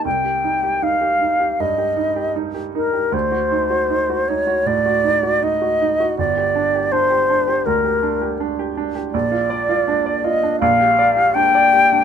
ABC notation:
X:1
M:4/4
L:1/16
Q:1/4=80
K:Gm
V:1 name="Flute"
g4 f4 e4 z2 B2 | c6 ^c2 d4 e4 | d4 c4 B4 z4 | d6 e2 f4 g4 |]
V:2 name="Grand piano"
C,, G E G E G E G G,, G E G E G E G | D,, ^F E F E F E F A,, F E F E F E F | G,,, G D G D G D G D,, G D G D G D G | B,,, F d F D d F D B,,, G d G D d G D |]